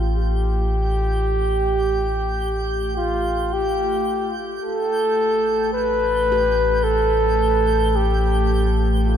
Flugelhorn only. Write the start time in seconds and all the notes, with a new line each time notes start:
0.19 G4
2.97 F4
3.53 G4
4.63 A4
5.73 B4
6.84 A4
7.96 G4
9.07 F4